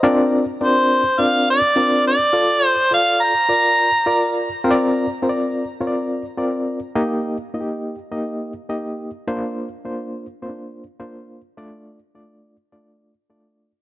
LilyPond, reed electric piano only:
\new Staff \with { instrumentName = "Reed electric piano" } { \time 4/4 \key bes \major \tempo 4 = 104 << { <c'' ees''>16 r2. r8. | r1 | r1 | r1 |
r1 | r1 | } \\ { <c' d' f' bes' d''>8 r8 <c' d' f' bes' d''>8 r8 <c' d' f' bes' d''>8 r8 <c' d' f' bes' d''>8 r8 | <f' a' d''>8 r8 <f' a' d''>8 r8 <f' bes' d''>8 r8 <f' bes' d''>8 r8 | <c' f' bes' c'' d''>8 r8 <c' f' bes' c'' d''>8 r8 <c' f' bes' des'' d''>8 r8 <c' f' bes' d''>8 r8 | <bes ees' g' ees''>8 r8 <bes ees' f' g' ees''>8 r8 <bes ees' g' ees''>8 r8 <bes ees' g' ees''>8 r8 |
<bes d' f' c''>8 r8 <bes d' f' c''>8 r8 <bes c' d' f' c''>8 r8 <bes d' f' c''>8 r8 | <a d' f' d''>8 r8 <a d' f' d''>8 r8 <a d' f' d''>8 r8 <a d' f' d''>8 r8 | } >> }